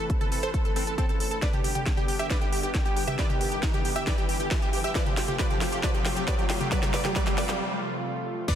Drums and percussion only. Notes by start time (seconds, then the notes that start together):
0.10 kick, closed hi-hat
0.21 closed hi-hat, mid tom
0.32 open hi-hat
0.43 closed hi-hat
0.54 kick, closed hi-hat
0.65 closed hi-hat
0.76 open hi-hat
0.87 closed hi-hat
0.98 kick, closed hi-hat
1.09 closed hi-hat
1.20 open hi-hat
1.31 closed hi-hat
1.42 kick, snare, closed hi-hat
1.53 closed hi-hat, mid tom
1.64 open hi-hat
1.75 closed hi-hat, mid tom
1.86 kick, snare, closed hi-hat
1.97 closed hi-hat, mid tom
2.08 open hi-hat
2.19 closed hi-hat
2.30 kick, snare, closed hi-hat
2.42 closed hi-hat
2.53 open hi-hat
2.63 closed hi-hat
2.75 kick, snare, closed hi-hat
2.86 closed hi-hat
2.97 open hi-hat
3.08 closed hi-hat, mid tom
3.19 kick, snare, closed hi-hat
3.30 closed hi-hat, mid tom
3.41 open hi-hat
3.52 closed hi-hat
3.63 kick, snare, closed hi-hat
3.74 closed hi-hat, mid tom
3.85 open hi-hat
3.96 closed hi-hat
4.07 kick, snare, closed hi-hat
4.18 closed hi-hat
4.29 open hi-hat
4.40 closed hi-hat
4.51 kick, snare, closed hi-hat
4.62 closed hi-hat
4.73 open hi-hat
4.84 closed hi-hat
4.95 kick, snare, closed hi-hat
5.06 closed hi-hat, mid tom
5.17 snare, open hi-hat
5.28 closed hi-hat, mid tom
5.39 kick, snare, closed hi-hat
5.50 closed hi-hat, mid tom
5.61 snare, open hi-hat
5.72 closed hi-hat
5.83 kick, snare, closed hi-hat
5.94 closed hi-hat
6.05 snare, open hi-hat
6.17 closed hi-hat
6.28 kick, snare, closed hi-hat
6.39 closed hi-hat
6.50 snare, open hi-hat
6.61 closed hi-hat, mid tom
6.72 kick, snare, closed hi-hat
6.83 snare, closed hi-hat, mid tom
6.94 snare, open hi-hat
7.05 snare, closed hi-hat, mid tom
7.16 kick, snare, closed hi-hat
7.27 snare, closed hi-hat, mid tom
7.38 snare, open hi-hat
7.49 snare
8.48 kick, closed hi-hat, crash